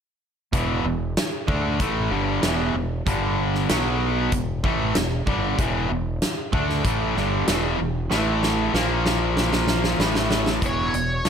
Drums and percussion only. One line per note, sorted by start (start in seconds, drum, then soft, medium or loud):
0.53 kick loud
0.53 closed hi-hat medium
1.17 snare loud
1.17 closed hi-hat medium
1.48 kick loud
1.80 kick loud
1.80 closed hi-hat medium
2.43 snare loud
2.43 closed hi-hat medium
3.07 kick loud
3.07 closed hi-hat medium
3.55 snare soft
3.69 snare loud
3.69 closed hi-hat medium
4.32 kick medium
4.32 closed hi-hat medium
4.64 kick medium
4.95 snare loud
4.95 closed hi-hat medium
5.27 kick loud
5.59 kick loud
5.59 closed hi-hat medium
6.22 snare loud
6.22 closed hi-hat medium
6.53 kick loud
6.70 snare soft
6.85 kick loud
6.85 closed hi-hat medium
7.17 snare soft
7.47 snare loud
7.47 closed hi-hat medium
8.11 snare medium
8.43 snare medium
8.75 snare medium
9.06 snare medium
9.37 snare medium
9.53 snare medium
9.68 snare medium
9.84 snare medium
10.00 snare medium
10.15 snare medium
10.31 snare medium
10.46 snare medium
10.62 kick medium
10.62 closed hi-hat medium
10.94 closed hi-hat medium
11.25 snare loud
11.25 closed hi-hat medium